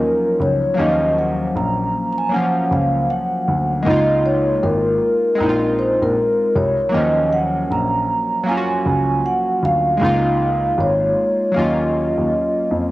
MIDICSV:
0, 0, Header, 1, 4, 480
1, 0, Start_track
1, 0, Tempo, 769231
1, 485, Time_signature, 4, 2, 24, 8
1, 8058, End_track
2, 0, Start_track
2, 0, Title_t, "Vibraphone"
2, 0, Program_c, 0, 11
2, 0, Note_on_c, 0, 70, 85
2, 259, Note_off_c, 0, 70, 0
2, 261, Note_on_c, 0, 73, 98
2, 465, Note_off_c, 0, 73, 0
2, 470, Note_on_c, 0, 77, 73
2, 495, Note_off_c, 0, 77, 0
2, 497, Note_on_c, 0, 75, 103
2, 739, Note_off_c, 0, 75, 0
2, 739, Note_on_c, 0, 78, 91
2, 956, Note_off_c, 0, 78, 0
2, 979, Note_on_c, 0, 82, 102
2, 1319, Note_off_c, 0, 82, 0
2, 1327, Note_on_c, 0, 82, 79
2, 1358, Note_off_c, 0, 82, 0
2, 1361, Note_on_c, 0, 80, 96
2, 1444, Note_off_c, 0, 80, 0
2, 1459, Note_on_c, 0, 78, 97
2, 1699, Note_off_c, 0, 78, 0
2, 1701, Note_on_c, 0, 77, 91
2, 1936, Note_on_c, 0, 78, 104
2, 1940, Note_off_c, 0, 77, 0
2, 2412, Note_on_c, 0, 75, 99
2, 2425, Note_off_c, 0, 78, 0
2, 2632, Note_off_c, 0, 75, 0
2, 2656, Note_on_c, 0, 73, 87
2, 2891, Note_on_c, 0, 70, 94
2, 2898, Note_off_c, 0, 73, 0
2, 3612, Note_on_c, 0, 72, 85
2, 3630, Note_off_c, 0, 70, 0
2, 3759, Note_off_c, 0, 72, 0
2, 3760, Note_on_c, 0, 70, 99
2, 4067, Note_off_c, 0, 70, 0
2, 4094, Note_on_c, 0, 73, 96
2, 4333, Note_on_c, 0, 75, 98
2, 4337, Note_off_c, 0, 73, 0
2, 4572, Note_on_c, 0, 78, 99
2, 4576, Note_off_c, 0, 75, 0
2, 4816, Note_off_c, 0, 78, 0
2, 4816, Note_on_c, 0, 82, 105
2, 5296, Note_on_c, 0, 80, 89
2, 5305, Note_off_c, 0, 82, 0
2, 5777, Note_on_c, 0, 78, 88
2, 5785, Note_off_c, 0, 80, 0
2, 6019, Note_off_c, 0, 78, 0
2, 6022, Note_on_c, 0, 77, 104
2, 6741, Note_on_c, 0, 73, 88
2, 6755, Note_off_c, 0, 77, 0
2, 7220, Note_on_c, 0, 75, 76
2, 7228, Note_off_c, 0, 73, 0
2, 7908, Note_off_c, 0, 75, 0
2, 8058, End_track
3, 0, Start_track
3, 0, Title_t, "Synth keys"
3, 0, Program_c, 1, 88
3, 0, Control_c, 1, 64, 127
3, 0, Note_on_c, 1, 53, 52
3, 0, Note_on_c, 1, 54, 64
3, 0, Note_on_c, 1, 58, 53
3, 0, Note_on_c, 1, 61, 60
3, 0, Note_on_c, 1, 63, 70
3, 0, Note_on_c, 1, 65, 85
3, 441, Note_off_c, 1, 58, 0
3, 449, Note_off_c, 1, 61, 0
3, 454, Note_off_c, 1, 54, 0
3, 456, Note_off_c, 1, 63, 0
3, 462, Note_on_c, 1, 54, 79
3, 478, Note_on_c, 1, 58, 72
3, 494, Control_c, 1, 64, 0
3, 494, Note_on_c, 1, 61, 70
3, 499, Note_off_c, 1, 53, 0
3, 500, Note_off_c, 1, 65, 0
3, 507, Note_on_c, 1, 63, 71
3, 546, Note_off_c, 1, 63, 0
3, 549, Note_on_c, 1, 53, 79
3, 610, Control_c, 1, 64, 127
3, 1378, Note_off_c, 1, 54, 0
3, 1386, Note_off_c, 1, 58, 0
3, 1394, Note_off_c, 1, 61, 0
3, 1421, Note_off_c, 1, 53, 0
3, 1430, Note_on_c, 1, 54, 70
3, 1443, Note_on_c, 1, 58, 67
3, 1458, Note_on_c, 1, 61, 68
3, 1472, Note_on_c, 1, 53, 84
3, 2341, Note_off_c, 1, 54, 0
3, 2348, Note_off_c, 1, 58, 0
3, 2355, Note_off_c, 1, 61, 0
3, 2363, Note_off_c, 1, 53, 0
3, 2387, Note_on_c, 1, 56, 77
3, 2401, Note_on_c, 1, 58, 71
3, 2413, Control_c, 1, 64, 0
3, 2416, Note_on_c, 1, 63, 70
3, 2431, Note_on_c, 1, 65, 91
3, 2536, Control_c, 1, 64, 127
3, 3300, Note_off_c, 1, 56, 0
3, 3307, Note_off_c, 1, 58, 0
3, 3315, Note_off_c, 1, 63, 0
3, 3322, Note_off_c, 1, 65, 0
3, 3340, Note_on_c, 1, 56, 77
3, 3356, Note_on_c, 1, 60, 66
3, 3372, Note_on_c, 1, 63, 71
3, 3375, Control_c, 1, 64, 0
3, 3386, Note_on_c, 1, 64, 66
3, 3425, Note_off_c, 1, 64, 0
3, 3426, Note_on_c, 1, 65, 75
3, 3472, Control_c, 1, 64, 127
3, 4256, Note_off_c, 1, 56, 0
3, 4265, Note_off_c, 1, 60, 0
3, 4272, Note_off_c, 1, 63, 0
3, 4299, Note_off_c, 1, 65, 0
3, 4300, Note_on_c, 1, 54, 76
3, 4316, Note_on_c, 1, 58, 72
3, 4332, Note_on_c, 1, 61, 72
3, 4335, Control_c, 1, 64, 0
3, 4347, Note_on_c, 1, 53, 81
3, 4439, Control_c, 1, 64, 127
3, 5216, Note_off_c, 1, 54, 0
3, 5225, Note_off_c, 1, 58, 0
3, 5232, Note_off_c, 1, 61, 0
3, 5240, Note_off_c, 1, 53, 0
3, 5263, Note_on_c, 1, 54, 75
3, 5278, Note_on_c, 1, 58, 66
3, 5294, Note_on_c, 1, 61, 67
3, 5309, Note_on_c, 1, 65, 65
3, 5347, Note_off_c, 1, 65, 0
3, 5348, Note_on_c, 1, 66, 81
3, 6178, Note_off_c, 1, 54, 0
3, 6185, Note_off_c, 1, 58, 0
3, 6194, Note_off_c, 1, 61, 0
3, 6221, Note_off_c, 1, 66, 0
3, 6222, Note_on_c, 1, 56, 72
3, 6237, Note_on_c, 1, 58, 68
3, 6252, Note_on_c, 1, 63, 78
3, 6255, Control_c, 1, 64, 0
3, 6266, Note_on_c, 1, 65, 90
3, 6354, Control_c, 1, 64, 127
3, 7137, Note_off_c, 1, 56, 0
3, 7145, Note_off_c, 1, 58, 0
3, 7153, Note_off_c, 1, 63, 0
3, 7160, Note_off_c, 1, 65, 0
3, 7186, Note_on_c, 1, 54, 73
3, 7202, Note_on_c, 1, 58, 69
3, 7213, Control_c, 1, 64, 0
3, 7216, Note_on_c, 1, 61, 63
3, 7230, Note_on_c, 1, 65, 77
3, 7308, Control_c, 1, 64, 127
3, 8058, Note_off_c, 1, 54, 0
3, 8058, Note_off_c, 1, 58, 0
3, 8058, Note_off_c, 1, 61, 0
3, 8058, Note_off_c, 1, 65, 0
3, 8058, End_track
4, 0, Start_track
4, 0, Title_t, "Grand piano"
4, 0, Program_c, 2, 0
4, 249, Note_on_c, 2, 37, 79
4, 374, Note_off_c, 2, 37, 0
4, 488, Note_on_c, 2, 39, 108
4, 903, Note_off_c, 2, 39, 0
4, 968, Note_on_c, 2, 34, 83
4, 1175, Note_off_c, 2, 34, 0
4, 1692, Note_on_c, 2, 37, 84
4, 1897, Note_off_c, 2, 37, 0
4, 2172, Note_on_c, 2, 38, 90
4, 2377, Note_off_c, 2, 38, 0
4, 2410, Note_on_c, 2, 37, 107
4, 2824, Note_off_c, 2, 37, 0
4, 2889, Note_on_c, 2, 32, 92
4, 3095, Note_off_c, 2, 32, 0
4, 3370, Note_on_c, 2, 34, 92
4, 3703, Note_off_c, 2, 34, 0
4, 3753, Note_on_c, 2, 34, 85
4, 3834, Note_off_c, 2, 34, 0
4, 4091, Note_on_c, 2, 36, 90
4, 4215, Note_off_c, 2, 36, 0
4, 4328, Note_on_c, 2, 39, 108
4, 4743, Note_off_c, 2, 39, 0
4, 4807, Note_on_c, 2, 34, 88
4, 5015, Note_off_c, 2, 34, 0
4, 5527, Note_on_c, 2, 37, 87
4, 5734, Note_off_c, 2, 37, 0
4, 6007, Note_on_c, 2, 38, 90
4, 6215, Note_off_c, 2, 38, 0
4, 6248, Note_on_c, 2, 37, 113
4, 6663, Note_off_c, 2, 37, 0
4, 6726, Note_on_c, 2, 32, 89
4, 6934, Note_off_c, 2, 32, 0
4, 7212, Note_on_c, 2, 39, 93
4, 7544, Note_off_c, 2, 39, 0
4, 7598, Note_on_c, 2, 39, 82
4, 7676, Note_off_c, 2, 39, 0
4, 7930, Note_on_c, 2, 41, 80
4, 8055, Note_off_c, 2, 41, 0
4, 8058, End_track
0, 0, End_of_file